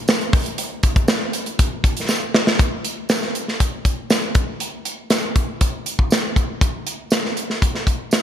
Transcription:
0.08 snare, tambourine
0.21 closed hi-hat
0.33 kick, open hi-hat
0.46 closed hi-hat
0.58 closed hi-hat
0.83 kick, closed hi-hat
0.96 kick, closed hi-hat
1.08 snare, tambourine
1.33 closed hi-hat
1.46 closed hi-hat
1.59 kick, closed hi-hat
1.84 kick, closed hi-hat
1.97 closed hi-hat
2.08 snare, tambourine
2.34 snare
2.47 snare
2.59 kick, closed hi-hat
2.85 closed hi-hat
3.09 snare, closed hi-hat, tambourine
3.23 snare
3.35 closed hi-hat
3.48 snare
3.60 kick, closed hi-hat
3.85 kick, closed hi-hat
4.10 snare, closed hi-hat, tambourine
4.35 kick, closed hi-hat
4.60 closed hi-hat
4.85 closed hi-hat
5.10 snare, closed hi-hat, tambourine
5.36 kick, closed hi-hat
5.61 kick, closed hi-hat
5.86 closed hi-hat
5.99 kick
6.10 snare, closed hi-hat, tambourine
6.36 kick, closed hi-hat
6.61 kick, closed hi-hat
6.87 closed hi-hat
7.10 snare, closed hi-hat, tambourine
7.25 snare
7.37 closed hi-hat
7.50 snare
7.62 kick, closed hi-hat
7.75 snare
7.87 kick, closed hi-hat
8.11 snare, closed hi-hat, tambourine

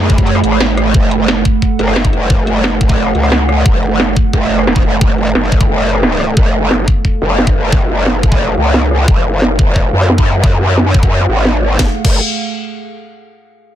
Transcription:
Already playing: F#2 A3 G#4 B5
0.01 cross-stick
0.10 kick, closed hi-hat
0.18 kick
0.27 closed hi-hat
0.35 cross-stick
0.44 G#1, closed hi-hat
0.52 cross-stick
0.61 snare, closed hi-hat
0.77 cross-stick, closed hi-hat
0.94 F#1 A4 F#5, kick, closed hi-hat
1.11 closed hi-hat
1.28 snare, closed hi-hat
1.37 cross-stick
1.45 kick, closed hi-hat
1.62 kick, closed hi-hat
1.79 F#1, closed hi-hat
1.88 cross-stick
1.96 snare, closed hi-hat
2.05 kick
2.13 closed hi-hat
2.30 kick, closed hi-hat
2.47 closed hi-hat
2.64 snare, closed hi-hat
2.81 kick, closed hi-hat
2.89 kick
2.98 closed hi-hat
3.06 cross-stick
3.15 C#2, closed hi-hat
3.23 cross-stick
3.32 snare, closed hi-hat
3.49 cross-stick, closed hi-hat
3.66 F#1, kick, closed hi-hat
3.83 closed hi-hat
4.00 snare, closed hi-hat
4.08 cross-stick
4.17 kick, closed hi-hat
4.33 F#1, kick, closed hi-hat
4.50 closed hi-hat
4.59 cross-stick
4.67 snare, closed hi-hat
4.76 kick
4.84 F#1, closed hi-hat
5.01 kick, closed hi-hat
5.18 closed hi-hat
5.35 F#1, snare, closed hi-hat
5.52 kick
5.61 kick
5.69 closed hi-hat
5.78 cross-stick
5.86 closed hi-hat
5.95 cross-stick
6.03 snare, closed hi-hat
6.20 cross-stick, closed hi-hat
6.37 F#1 F5, kick, closed hi-hat
6.54 closed hi-hat
6.71 snare, closed hi-hat
6.79 cross-stick
6.88 kick
7.05 kick, closed hi-hat
7.22 F#1, closed hi-hat
7.30 cross-stick
7.39 snare
7.47 kick
7.56 closed hi-hat
7.72 kick
7.89 closed hi-hat
8.06 snare
8.23 kick
8.32 kick
8.49 cross-stick
8.57 C#2, closed hi-hat
8.66 cross-stick
8.74 snare
8.91 cross-stick, closed hi-hat
9.08 F#1, kick
9.25 closed hi-hat
9.42 snare
9.51 cross-stick
9.59 F#1, kick
9.76 kick
9.93 F#2, closed hi-hat
10.01 cross-stick
10.10 snare
10.18 kick
10.44 kick
10.78 snare
10.86 cross-stick
10.94 kick
11.03 kick
11.20 cross-stick
11.28 G#1
11.37 cross-stick
11.45 snare
11.62 cross-stick
11.79 F#1, kick, snare
12.05 F#1, kick, crash

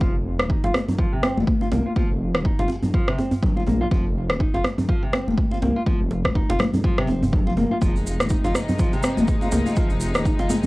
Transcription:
0.00 F1 F3, kick, muted conga, high conga
0.39 D#1, cross-stick, muted conga, high conga
0.50 D#4, kick
0.64 F1 F4, djembe slap
0.74 cross-stick, muted conga, djembe tone
0.88 djembe bass, low conga
0.98 F3, kick
1.12 C3
1.23 C4, cross-stick, muted conga, djembe tone
1.37 F1, high conga
1.47 kick, high conga
1.61 F4, muted conga, djembe tone
1.72 C2 A#3, djembe slap, djembe tone, high conga
1.86 F4
1.96 F3, kick, muted conga, high conga
2.10 F1
2.35 D#1, cross-stick, muted conga, high conga
2.45 D#4, kick
2.59 F1 F4, djembe slap
2.68 muted conga, djembe tone, high conga
2.82 djembe bass, low conga
2.94 F3, kick
3.08 C3, cross-stick
3.18 C4, muted conga, djembe tone
3.31 djembe bass
3.42 kick, low conga
3.56 F4, muted conga
3.67 A#1 A#3, high conga, djembe tone
3.81 F4
3.91 F1 F3, kick, muted conga, high conga
4.30 D#1, cross-stick, muted conga, high conga
4.40 D#4, kick
4.54 F1 F4, djembe slap
4.64 cross-stick, muted conga, djembe tone
4.78 low conga, djembe bass
4.89 F3, kick
5.03 C3
5.13 C4, cross-stick, muted conga, djembe tone
5.27 F1, high conga
5.38 kick, high conga
5.51 F4, muted conga, djembe tone
5.62 C2 A#3, djembe slap, djembe tone, high conga
5.76 F4
5.86 F3, kick, muted conga, high conga
6.00 F1
6.11 djembe slap
6.25 D#1, kick, cross-stick, muted conga, high conga
6.35 D#4, kick
6.49 F1 F4, djembe slap
6.59 cross-stick, muted conga, djembe tone, high conga, low conga
6.74 djembe bass, low conga
6.84 F3, kick
6.98 C3, cross-stick
7.07 F1 C4, muted conga, djembe tone
7.23 djembe bass
7.33 kick, low conga
7.47 F4, muted conga
7.57 A#3, djembe tone, high conga
7.71 F4
7.81 F1 C3 F3 G#3 D#4, kick, muted conga, high conga, maracas
7.96 maracas
8.07 maracas
8.20 D#1, cross-stick, muted conga, high conga, maracas
8.29 D#4, kick, maracas
8.44 F1 F4, djembe slap, maracas
8.54 cross-stick, muted conga, djembe tone, maracas
8.68 djembe bass, low conga, maracas
8.79 F3, kick, maracas
8.93 C3, maracas
9.03 C4, cross-stick, muted conga, djembe tone, maracas
9.17 F1, high conga, maracas
9.28 kick, maracas
9.41 F4, muted conga, djembe tone, maracas
9.52 C2 A#3, djembe slap, high conga, djembe tone, maracas
9.66 F4, maracas
9.76 F3, kick, muted conga, high conga, maracas
9.90 F1, maracas
10.00 maracas
10.14 D#1, cross-stick, muted conga, high conga, maracas
10.25 D#4, kick, maracas
10.39 F1 F4, djembe slap, maracas
10.50 muted conga, high conga, djembe tone, maracas
10.63 maracas

